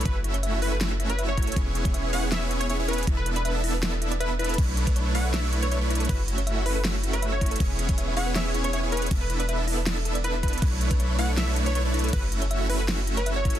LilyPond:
<<
  \new Staff \with { instrumentName = "Digital synth lead" } { \time 4/4 \key fis \minor \tempo 4 = 159 b'16 r4 r16 b'16 b'16 r8. b'16 r16 cis''8. | r4. fis''16 r16 e''16 r8 cis''16 cis''16 r16 b'16 r16 | r16 b'16 r16 b'16 b'16 r4. r16 b'16 r16 b'8 | r4. fis''16 r16 e''16 r8 cis''16 cis''16 r8. |
b'16 r4 r16 b'16 b'16 r8. b'16 r16 cis''8. | r4. fis''16 r16 e''16 r8 cis''16 cis''16 r16 b'16 r16 | r16 b'16 r16 b'16 b'16 r4. r16 b'16 r16 b'8 | r4. fis''16 r16 e''16 r8 cis''16 cis''16 r8. |
b'16 r4 r16 b'16 b'16 r8. b'16 r16 cis''8. | }
  \new Staff \with { instrumentName = "Synth arpeggio sound" } { \time 4/4 \key fis \minor e'16 fis'16 e'16 cis''16 e''16 e''16 e'16 a'16 e'16 fis'16 e'16 cis''16 e''16 e''16 e'16 a'16 | e'16 gis'16 e'16 cis''16 e''16 e''16 e'16 b'16 e'16 gis'16 e'16 cis''16 e''16 e''16 e'16 b'16 | e'16 a'16 e'16 d''16 e''16 e''16 e'16 b'16 e'16 a'16 e'16 d''16 e''16 e''16 e'16 b'16 | e'16 fis'16 e'16 b'16 cis''16 cis''16 e'16 a'16 e'16 fis'16 e'16 b'16 cis''16 cis''16 e'16 a'16 |
e'16 fis'16 e'16 cis''16 e''16 e''16 e'16 a'16 e'16 fis'16 e'16 cis''16 e''16 e''16 e'16 a'16 | e'16 gis'16 e'16 cis''16 e''16 e''16 e'16 b'16 e'16 gis'16 e'16 cis''16 e''16 e''16 e'16 b'16 | e'16 a'16 e'16 d''16 e''16 e''16 e'16 b'16 e'16 a'16 a'16 d''16 e'16 e'16 e'16 b'16 | e'16 fis'16 e'16 b'16 cis''16 cis''16 e'16 a'16 e'16 fis'16 e'16 b'16 cis''16 cis''16 e'16 a'16 |
e'16 fis'16 e'16 cis''16 e''16 e''16 e'16 a'16 e'16 fis'16 e'16 cis''16 e''16 e''16 e'16 a'16 | }
  \new Staff \with { instrumentName = "Supersaw synth" } { \time 4/4 \key fis \minor r4. <a cis' e' fis' e''>2~ <a cis' e' fis' e''>8 | <b cis' e' gis' cis''>4. <b cis' e' gis' cis''>4. <b cis' e' gis' cis''>16 <b cis' e' gis' cis''>8. | <b d' e' a' e''>4. <b d' e' a' e''>2~ <b d' e' a' e''>8 | <a d' e' b'>4. <a d' e' b' cis''>4. <a d' e' b' cis''>16 <a d' e' b' cis''>8. |
cis'4. <a cis' e' fis' e''>2~ <a cis' e' fis' e''>8 | <b cis' cis''>4. <b cis' e' gis' cis''>4. <b cis' e' gis' cis''>16 <b cis' e' gis' cis''>8. | d'4. <b d' e' a' e''>2~ <b d' e' a' e''>8 | <a d' e' b' cis''>4. <a d' e' b' cis''>4. <a d' e' b' cis''>16 <a d' e' b' cis''>8. |
r4. <a cis' e' fis' e''>2~ <a cis' e' fis' e''>8 | }
  \new Staff \with { instrumentName = "808-style bass" } { \clef bass \time 4/4 \key fis \minor fis,,1 | e,,1 | e,,1 | b,,1 |
fis,,1 | e,,1 | e,,1 | b,,1 |
fis,,1 | }
  \new DrumStaff \with { instrumentName = "Drums" } \drummode { \time 4/4 <hh bd>8 hh16 hh16 hh8 hho8 <hh sn>8 hh16 hh16 hh8 <hh bd>32 hh32 hh32 hh32 | <hh bd>8 hh16 <hh bd>16 hh8 hho8 <hh sn>8 hh16 hh16 hh8 hh32 hh32 hh32 hh32 | <hh bd>8 hh16 hh16 hh8 hho8 <hh sn>8 hh16 hh16 hh8 hh32 hh32 hh32 hh32 | <cymc hh bd>8 hh16 <hh bd>16 hh8 hho8 <cymc hh sn>8 hh16 hh16 hh8 hh32 hh32 hh32 hh32 |
<cymc hh bd>8 hh16 hh16 hh8 hho8 <cymc hh sn>8 hh16 hh16 hh8 <hh bd>32 hh32 hh32 hh32 | <cymc hh bd>8 hh16 <hh bd>16 hh8 hho8 <cymc hh sn>8 hh16 hh16 hh8 hh32 hh32 hh32 hh32 | <cymc hh bd>8 hh16 hh16 hh8 hho8 <cymc hh sn>8 hh16 hh16 hh8 <hh bd>32 hh32 hh32 hh32 | <cymc hh bd>8 hh16 <hh bd>16 hh8 hho8 <cymc hh sn>8 hh16 hh16 hh8 hh32 hh32 hh32 hh32 |
<cymc hh bd>8 hh16 hh16 hh8 hho8 <cymc hh sn>8 hh16 hh16 hh8 <hh bd>32 hh32 hh16 | }
>>